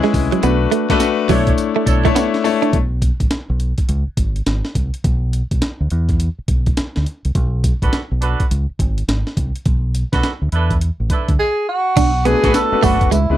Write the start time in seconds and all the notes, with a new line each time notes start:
Already playing: G#3 C#4 E4 G#4 B4
0.03 G#3, snare
0.14 C2, muted clean electric guitar stroke, kick, open hi-hat, tambourine
0.32 F#3, closed hi-hat
0.43 B1 A3 B3 D4 F#4 B4, closed hi-hat, tambourine
0.71 A3, closed hi-hat
0.89 A3 D4 F#4 A4 B4, muted fingered electric bass stroke, muted clean electric guitar stroke, kick, snare, closed hi-hat
1.00 snare, closed hi-hat, tambourine
1.29 B1 F#3 A3 D4 E4 A4 C#5, kick, open hi-hat, tambourine
1.47 kick, closed hi-hat
1.58 closed hi-hat, tambourine
1.76 A3
1.86 B1 D4 E4 A4 C#5, muted clean electric guitar stroke, kick, closed hi-hat, tambourine
2.05 A3 D4 E4 C#5, kick, closed hi-hat
2.15 B3, snare, closed hi-hat, tambourine
2.34 snare
2.44 A3 D4 E4 C#5, muted clean electric guitar stroke, open hi-hat, tambourine
2.62 D4, closed hi-hat
2.73 B1, kick, closed hi-hat
3.02 kick, closed hi-hat
3.20 A1, kick, closed hi-hat
3.31 snare, closed hi-hat
3.50 B1
3.60 closed hi-hat
3.78 kick, closed hi-hat
3.89 C#2, closed hi-hat
4.07 muted fingered electric bass stroke
4.17 G#1, kick, closed hi-hat
4.36 closed hi-hat
4.46 G#1, snare, closed hi-hat
4.65 snare
4.75 C2, kick, closed hi-hat
4.94 closed hi-hat
5.04 B1, kick, closed hi-hat
5.33 closed hi-hat
5.51 B1, kick, closed hi-hat
5.62 muted fingered electric bass stroke, snare, closed hi-hat
5.80 D2
5.90 E2, closed hi-hat
6.09 kick, closed hi-hat
6.20 closed hi-hat
6.38 muted fingered electric bass stroke
6.48 B1, kick, closed hi-hat
6.66 kick, closed hi-hat
6.77 muted fingered electric bass stroke, snare, closed hi-hat
6.96 D2, snare
7.06 closed hi-hat
7.25 C2, closed hi-hat
7.35 B1, kick, closed hi-hat
7.64 kick, closed hi-hat
7.82 A1 D4 F#4 A4 B4, kick, closed hi-hat
7.93 snare, closed hi-hat
8.11 B1
8.21 D4 F#4 A4 B4, closed hi-hat
8.40 kick, closed hi-hat
8.51 C#2, closed hi-hat
8.69 muted fingered electric bass stroke
8.79 G#1, kick, closed hi-hat
8.98 closed hi-hat
9.08 G#1, snare, closed hi-hat
9.27 snare
9.37 C2, kick, closed hi-hat
9.56 closed hi-hat
9.65 B1, kick, closed hi-hat
9.95 closed hi-hat
10.12 B1 D4 F#4 A4 B4, kick, snare, closed hi-hat
10.23 muted fingered electric bass stroke, snare, closed hi-hat
10.42 D2
10.52 E2 D4 E4 A4 B4, closed hi-hat
10.70 kick, closed hi-hat
10.81 closed hi-hat
11.00 A1
11.10 D4 E4 A4 B4, kick, closed hi-hat
11.28 D2, kick, closed hi-hat
11.39 G#4
11.69 F#4
11.97 B1 D4, kick, closed hi-hat, crash, tambourine
12.25 A3 B3 D4 F#4 G#4 B4, closed hi-hat
12.43 A1 D4 F#4 A4 B4, muted clean electric guitar stroke, kick, snare, closed hi-hat
12.54 A4, snare, closed hi-hat, tambourine
12.72 A3 B3 D4 F#4 B4, muted fingered electric bass stroke
12.83 F#1 A3 D4 F#4 A4 B4, kick, open hi-hat, tambourine
13.01 kick, closed hi-hat
13.11 C#2 G#3 E4, closed hi-hat, tambourine
13.30 C#2 G#3 B3 C#4 E4 B4